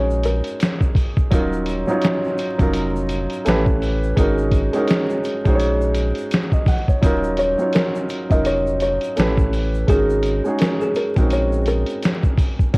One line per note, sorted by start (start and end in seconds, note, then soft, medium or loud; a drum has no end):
0.00 0.41 A#1 medium
0.00 1.33 G#3 medium
0.00 1.31 C#4 medium
0.00 1.32 D#4 medium
0.00 1.34 F#4 medium
0.00 1.33 G#4 medium
0.00 1.33 A#4 medium
0.00 0.21 C#5 medium
0.10 shaker medium
0.23 1.28 A#4 medium
0.23 closed hi-hat medium
0.23 shaker medium
0.44 closed hi-hat soft
0.44 shaker medium
0.60 snare loud
0.60 closed hi-hat medium
0.60 shaker medium
0.81 kick medium
0.81 shaker soft
0.95 kick loud
0.95 open hi-hat medium
0.95 shaker soft
1.17 kick medium
1.17 shaker soft
1.30 1.84 D#1 loud
1.30 1.65 F#3 loud
1.30 1.65 C#4 medium
1.30 1.66 D#4 medium
1.30 1.66 F4 medium
1.30 kick loud
1.30 closed hi-hat medium
1.30 shaker medium
1.34 1.67 A#4 medium
1.53 shaker medium
1.66 closed hi-hat medium
1.66 shaker medium
1.87 2.31 F#3 medium
1.87 2.31 C#4 medium
1.87 2.32 D#4 medium
1.87 2.32 F4 medium
1.87 2.33 C#5 medium
1.87 shaker soft
2.02 snare loud
2.02 closed hi-hat medium
2.02 shaker medium
2.24 shaker medium
2.38 closed hi-hat medium
2.38 shaker soft
2.58 3.27 F1 medium
2.58 3.45 F#3 medium
2.58 3.44 C#4 medium
2.58 3.46 D#4 medium
2.58 3.47 F4 medium
2.58 kick medium
2.58 closed hi-hat soft
2.58 shaker soft
2.63 3.47 A#4 medium
2.74 closed hi-hat medium
2.74 shaker medium
2.96 shaker medium
3.09 closed hi-hat medium
3.09 shaker medium
3.30 closed hi-hat soft
3.30 shaker medium
3.45 4.14 A1 loud
3.45 4.05 A3 medium
3.45 4.05 C#4 medium
3.45 4.06 E4 medium
3.45 4.06 G4 medium
3.45 snare loud
3.45 closed hi-hat medium
3.45 shaker medium
3.49 4.07 B4 loud
3.66 kick medium
3.66 shaker soft
3.82 open hi-hat medium
3.82 shaker soft
4.03 shaker soft
4.16 4.70 G#1 loud
4.16 4.51 G#3 medium
4.16 4.51 C#4 medium
4.16 4.52 D#4 medium
4.16 4.52 F#4 medium
4.16 kick loud
4.16 closed hi-hat loud
4.16 shaker medium
4.20 4.53 A#4 loud
4.38 shaker medium
4.51 kick medium
4.51 closed hi-hat medium
4.51 shaker soft
4.73 5.16 G#3 medium
4.73 5.17 C#4 medium
4.73 5.18 D#4 medium
4.73 5.18 F#4 medium
4.73 closed hi-hat soft
4.73 shaker soft
4.77 5.19 A#4 medium
4.88 snare loud
4.88 closed hi-hat medium
4.88 shaker medium
5.09 shaker soft
5.24 closed hi-hat medium
5.24 shaker soft
5.44 6.13 A#1 medium
5.44 6.31 G#3 medium
5.44 6.32 C#4 medium
5.44 6.32 D#4 medium
5.44 6.33 F#4 medium
5.44 kick loud
5.44 closed hi-hat soft
5.44 shaker soft
5.48 5.52 C5 medium
5.55 6.36 C#5 medium
5.59 closed hi-hat medium
5.59 shaker medium
5.81 shaker soft
5.95 closed hi-hat medium
5.95 shaker medium
6.15 closed hi-hat soft
6.15 shaker soft
6.31 snare loud
6.31 closed hi-hat medium
6.31 shaker medium
6.52 6.67 D#5 medium
6.52 kick loud
6.52 shaker soft
6.66 6.87 F#5 medium
6.66 kick loud
6.66 snare soft
6.66 open hi-hat medium
6.66 shaker soft
6.88 7.22 C#5 medium
6.88 kick medium
6.88 shaker soft
7.02 7.55 D#1 loud
7.02 7.36 F#3 medium
7.02 7.37 C#4 medium
7.02 7.37 D#4 medium
7.02 7.38 F4 medium
7.02 kick loud
7.02 closed hi-hat medium
7.02 shaker medium
7.06 7.38 A#4 loud
7.24 shaker soft
7.37 7.71 C#5 medium
7.37 closed hi-hat medium
7.37 shaker soft
7.58 8.02 F#3 medium
7.58 8.03 C#4 medium
7.58 8.03 D#4 medium
7.58 8.04 F4 medium
7.58 shaker soft
7.62 8.04 C#5 medium
7.73 8.28 A#4 medium
7.73 snare loud
7.73 closed hi-hat medium
7.73 shaker medium
7.95 shaker medium
8.09 closed hi-hat medium
8.09 shaker soft
8.30 8.98 F1 medium
8.30 9.16 F#3 medium
8.30 9.16 C#4 medium
8.30 9.17 D#4 medium
8.30 9.18 F4 medium
8.30 8.45 D#5 medium
8.30 kick medium
8.30 closed hi-hat soft
8.30 shaker soft
8.34 9.19 A#4 medium
8.45 8.78 C#5 medium
8.45 closed hi-hat medium
8.45 shaker medium
8.67 shaker soft
8.80 9.35 C#5 medium
8.80 closed hi-hat medium
8.80 shaker medium
9.01 closed hi-hat soft
9.01 shaker soft
9.16 9.85 A1 medium
9.16 9.76 A3 medium
9.16 9.77 C#4 medium
9.16 9.77 E4 medium
9.16 9.78 G4 medium
9.16 snare loud
9.16 closed hi-hat medium
9.16 shaker medium
9.20 9.78 B4 medium
9.38 kick medium
9.38 shaker soft
9.53 open hi-hat soft
9.53 shaker soft
9.75 shaker soft
9.87 10.41 G#1 loud
9.87 10.22 G#3 medium
9.87 10.22 C#4 medium
9.87 10.23 D#4 medium
9.87 10.23 F#4 medium
9.87 10.56 G#4 loud
9.87 kick loud
9.87 closed hi-hat medium
9.87 shaker medium
9.92 10.24 A#4 medium
10.10 shaker medium
10.23 closed hi-hat medium
10.23 shaker soft
10.44 10.88 G#3 medium
10.44 10.88 C#4 medium
10.44 10.89 D#4 medium
10.44 10.89 F#4 medium
10.44 shaker soft
10.48 10.90 G#4 medium
10.58 10.79 A#4 medium
10.58 snare loud
10.58 closed hi-hat medium
10.58 shaker medium
10.81 10.95 G#4 medium
10.81 shaker medium
10.95 11.28 A#4 medium
10.95 closed hi-hat medium
10.95 shaker soft
11.15 11.84 A#1 medium
11.15 12.03 G#3 medium
11.15 11.22 C4 medium
11.15 12.04 D#4 medium
11.15 12.04 F#4 medium
11.15 kick medium
11.15 closed hi-hat soft
11.15 shaker soft
11.20 12.06 C#4 medium
11.20 12.05 A#4 medium
11.30 11.64 C#5 medium
11.30 closed hi-hat medium
11.30 shaker medium
11.52 shaker medium
11.65 12.70 A#4 medium
11.65 closed hi-hat medium
11.65 shaker medium
11.86 closed hi-hat soft
11.86 shaker soft
12.02 snare loud
12.02 closed hi-hat medium
12.02 shaker medium
12.23 kick medium
12.23 shaker soft
12.37 kick loud
12.37 open hi-hat medium
12.37 shaker soft
12.59 kick medium
12.59 shaker soft
12.73 12.78 D#1 loud
12.73 12.78 F#3 medium
12.73 12.78 C#4 medium
12.73 kick loud
12.73 closed hi-hat medium
12.73 shaker medium